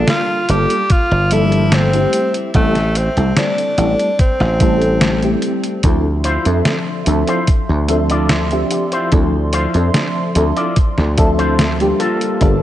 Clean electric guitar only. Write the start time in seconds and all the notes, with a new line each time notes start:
6.24 E4 F4 C5
7.07 muted clean electric guitar stroke
7.28 E4 F4 C5
7.89 muted clean electric guitar stroke
8.10 E4 F4 D5
8.71 muted clean electric guitar stroke
8.92 E4 F4 C5
9.53 E4 F4 C5
10.35 muted clean electric guitar stroke
10.56 E4 F4 D5
11.17 muted clean electric guitar stroke
11.38 E4 F4 C5
11.99 A#3 F4 A4